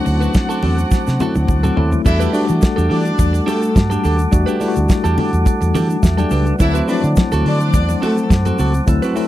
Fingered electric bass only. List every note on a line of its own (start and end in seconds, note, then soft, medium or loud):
0.07 0.26 D2 loud
0.63 0.83 E2 medium
1.08 1.17 C3 medium
1.36 1.45 D2 loud
1.49 1.68 D2 medium
1.77 1.97 D#2 loud
2.06 2.26 E2 loud
2.50 2.59 E3 loud
2.78 2.87 E2 loud
2.91 3.11 E3 loud
3.19 3.39 E2 loud
3.76 3.96 G2 medium
4.05 4.24 D#2 loud
4.33 4.43 E2 loud
4.77 4.86 D2 medium
5.05 5.14 E2 loud
5.33 5.42 E2 medium
5.62 5.71 E2 loud
5.75 5.94 E3 medium
6.03 6.23 E2 loud
6.31 6.51 C#2 loud
6.60 6.80 D2 loud
7.04 7.13 D3 loud
7.32 7.41 D2 loud
7.45 7.75 D3 loud
7.74 7.93 E2 loud
8.31 8.50 F#2 medium
8.59 8.79 C#2 loud
8.88 8.98 D2 loud